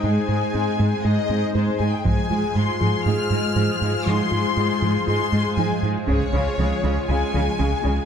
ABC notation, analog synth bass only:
X:1
M:4/4
L:1/8
Q:1/4=119
K:Fm
V:1 name="Analog synth bass" clef=bass
A,, A,, A,, A,, A,, A,, A,, A,, | A,, A,, A,, A,, A,, A,, A,, A,, | A,, A,, A,, A,, A,, A,, A,, A,, | D,, D,, D,, D,, D,, D,, D,, D,, |]